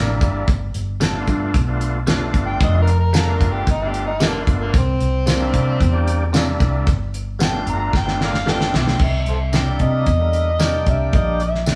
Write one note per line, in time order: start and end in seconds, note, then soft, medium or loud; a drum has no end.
0.00 0.18 A1 medium
0.00 0.11 C3 medium
0.00 0.48 G3 medium
0.00 0.11 A#3 medium
0.00 0.48 A#3 medium
0.00 0.11 D4 medium
0.00 0.49 D4 medium
0.00 0.12 E4 medium
0.00 0.49 E4 loud
0.21 0.45 G1 medium
0.21 kick medium
0.21 closed hi-hat medium
0.48 0.73 G1 loud
0.48 kick loud
0.48 closed hi-hat medium
0.74 1.24 G1 medium
0.74 closed hi-hat medium
1.00 1.17 G3 medium
1.00 1.17 B3 medium
1.00 1.18 F4 medium
1.00 1.18 A4 loud
1.00 snare loud
1.00 closed hi-hat medium
1.00 tambourine loud
1.14 1.56 A3 medium
1.14 1.56 B3 medium
1.14 1.56 D4 medium
1.14 1.56 F4 loud
1.27 1.52 G2 loud
1.27 kick medium
1.27 closed hi-hat medium
1.54 2.30 B1 medium
1.54 kick medium
1.54 closed hi-hat medium
1.67 1.98 A3 medium
1.67 1.99 B3 medium
1.67 1.99 D4 medium
1.67 1.99 F4 medium
1.81 closed hi-hat medium
2.07 2.23 G3 medium
2.07 2.90 A3 medium
2.07 2.24 B3 medium
2.07 2.90 B3 medium
2.07 2.90 D4 medium
2.07 2.24 F4 loud
2.07 2.90 F4 loud
2.07 2.25 A4 medium
2.07 snare loud
2.07 closed hi-hat medium
2.07 tambourine loud
2.34 2.59 G1 medium
2.34 kick medium
2.34 closed hi-hat medium
2.46 2.62 G5 loud
2.60 3.37 F1 loud
2.60 2.79 D#5 loud
2.60 kick loud
2.60 closed hi-hat medium
2.81 2.97 A#4 medium
2.87 closed hi-hat medium
2.99 3.15 A#4 loud
3.13 3.30 G3 medium
3.13 3.30 B3 medium
3.13 3.30 F4 medium
3.13 3.31 A4 medium
3.13 3.33 A#4 medium
3.13 snare loud
3.13 closed hi-hat medium
3.13 tambourine loud
3.27 3.68 A3 medium
3.27 3.69 B3 medium
3.27 3.69 D4 medium
3.27 3.69 F4 medium
3.35 3.54 A#4 loud
3.41 3.66 G1 medium
3.41 kick medium
3.41 closed hi-hat medium
3.53 3.69 G4 medium
3.67 4.43 G1 loud
3.67 3.90 D#4 medium
3.67 kick medium
3.67 closed hi-hat medium
3.80 4.12 A3 medium
3.80 4.12 B3 medium
3.80 4.12 D4 medium
3.80 4.12 F4 medium
3.88 4.04 G4 medium
3.94 closed hi-hat medium
4.06 4.26 D#4 medium
4.20 4.37 G3 medium
4.20 4.74 A3 medium
4.20 4.74 B3 medium
4.20 4.37 B3 medium
4.20 4.74 D4 medium
4.20 4.74 F4 medium
4.20 4.37 F4 medium
4.20 4.38 A4 medium
4.20 snare loud
4.20 closed hi-hat medium
4.20 tambourine loud
4.25 4.40 A#3 medium
4.47 4.72 G1 loud
4.47 kick medium
4.47 closed hi-hat medium
4.61 4.76 A#3 medium
4.74 4.99 C2 loud
4.74 6.32 C4 loud
4.74 kick loud
4.74 closed hi-hat medium
5.00 5.50 C2 medium
5.00 closed hi-hat medium
5.26 5.43 C3 medium
5.26 5.43 E3 medium
5.26 5.44 A#3 medium
5.26 5.44 D4 medium
5.26 snare loud
5.26 closed hi-hat medium
5.26 tambourine loud
5.39 5.81 G3 medium
5.39 5.81 A#3 medium
5.39 5.82 D4 medium
5.39 5.82 E4 loud
5.54 5.79 C3 loud
5.54 kick medium
5.54 closed hi-hat medium
5.80 6.56 E2 medium
5.80 kick medium
5.80 closed hi-hat medium
5.92 6.24 G3 medium
5.92 6.24 A#3 medium
5.92 6.24 D4 medium
5.92 6.25 G4 medium
6.07 closed hi-hat medium
6.32 6.50 C3 medium
6.32 6.50 E3 medium
6.32 6.86 G3 medium
6.32 6.87 A#3 medium
6.32 6.50 A#3 medium
6.32 6.87 D4 medium
6.32 6.51 D4 loud
6.32 6.87 E4 medium
6.32 snare loud
6.32 closed hi-hat loud
6.32 tambourine loud
6.60 6.85 C2 medium
6.60 kick medium
6.60 closed hi-hat medium
6.87 7.63 G1 loud
6.87 kick loud
6.87 closed hi-hat medium
7.14 closed hi-hat medium
7.39 7.56 G3 medium
7.39 7.56 B3 medium
7.39 7.57 F4 medium
7.39 7.57 A4 medium
7.39 snare loud
7.39 closed hi-hat medium
7.39 tambourine loud
7.43 7.68 G5 loud
7.53 7.94 A3 medium
7.53 7.94 B3 medium
7.53 7.95 D4 medium
7.53 7.95 F4 medium
7.67 7.92 G1 loud
7.67 7.94 A#5 loud
7.67 closed hi-hat medium
7.93 8.69 G1 loud
7.93 8.21 G5 loud
7.93 kick medium
7.93 snare medium
8.05 8.37 A3 medium
8.05 8.37 B3 medium
8.05 8.38 D4 medium
8.05 8.38 F4 medium
8.05 snare medium
8.21 8.30 A#4 medium
8.21 8.33 D5 medium
8.21 8.48 F5 medium
8.21 snare medium
8.34 snare medium
8.46 8.63 G3 medium
8.46 9.00 A3 medium
8.46 9.00 B3 medium
8.46 8.63 B3 medium
8.46 9.00 D4 medium
8.46 9.00 F4 medium
8.46 8.63 F4 medium
8.46 8.64 A4 medium
8.46 8.73 G5 loud
8.46 snare medium
8.61 snare medium
8.73 8.98 B1 loud
8.73 8.85 D5 medium
8.73 8.84 E5 medium
8.73 9.00 G5 loud
8.73 snare loud
8.88 snare medium
8.99 9.25 C2 loud
8.99 kick loud
8.99 crash loud
9.03 9.27 E5 medium
9.26 9.77 C2 medium
9.26 9.37 A4 medium
9.26 9.38 C5 medium
9.26 9.53 E5 medium
9.26 closed hi-hat medium
9.53 9.69 C3 medium
9.53 9.70 A#3 medium
9.53 9.70 D4 medium
9.53 9.71 E4 medium
9.53 9.62 D5 medium
9.53 9.63 E5 medium
9.53 9.83 G5 loud
9.53 snare loud
9.53 closed hi-hat medium
9.53 tambourine loud
9.66 10.07 G3 medium
9.66 10.08 A#3 medium
9.66 10.08 D4 medium
9.66 10.08 E4 medium
9.79 10.05 C3 loud
9.79 10.87 D#5 loud
9.79 kick medium
9.79 closed hi-hat medium
10.06 10.83 E2 medium
10.06 kick medium
10.06 closed hi-hat medium
10.19 10.51 D3 medium
10.19 10.51 G3 medium
10.19 10.51 A#3 medium
10.19 10.52 E4 medium
10.33 closed hi-hat medium
10.59 10.76 C3 medium
10.59 11.42 G3 medium
10.59 11.42 A#3 medium
10.59 10.76 A#3 medium
10.59 11.42 D4 medium
10.59 10.77 D4 medium
10.59 10.77 E4 medium
10.59 11.42 G4 medium
10.59 snare loud
10.59 closed hi-hat medium
10.59 tambourine loud
10.86 11.12 C2 medium
10.86 11.17 E5 medium
10.86 kick medium
10.86 closed hi-hat medium
11.13 11.75 A#1 loud
11.13 11.41 D#5 medium
11.13 kick loud
11.13 closed hi-hat medium
11.40 11.75 E5 loud
11.40 closed hi-hat medium
11.55 snare soft
11.66 11.75 C3 medium
11.66 11.75 A#3 medium
11.66 11.75 D4 medium
11.66 11.75 E4 medium
11.66 snare loud
11.66 closed hi-hat medium
11.66 tambourine loud